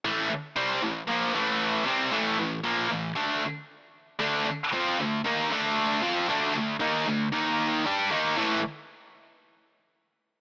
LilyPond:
\new Staff \with { instrumentName = "Distorted electric guitar" } { \clef bass \time 4/4 \key a \minor \tempo 4 = 115 <a, e a>8 r8 <c g c'>8 <a, e>8 <bes, f bes>8 <a, e a>4 <c g c'>8 | <a, e a>8 <a, e>8 <bes, f bes>8 <a, e>8 <d a d'>8 r4. | <d a d'>8 r8 <f c' f'>8 <d a>8 <dis bes dis'>8 <d a d'>4 <f c' f'>8 | <d a d'>8 <d a>8 <dis bes dis'>8 <d a>8 <dis ais dis'>4 <g d' g'>8 <dis ais dis'>8 |
<a, e a>8 r2. r8 | }